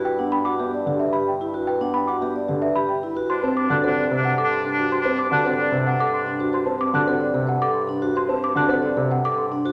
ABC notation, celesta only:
X:1
M:3/4
L:1/16
Q:1/4=111
K:Dmix
V:1 name="Celesta"
g z b d' z3 e b z3 | g z b d' z3 e b z3 | c' z d' f' z3 f d' z3 | c' z d' f' z3 f d' z3 |
c' z d' f' z3 f d' z3 | c' z d' f' z3 f d' z3 |]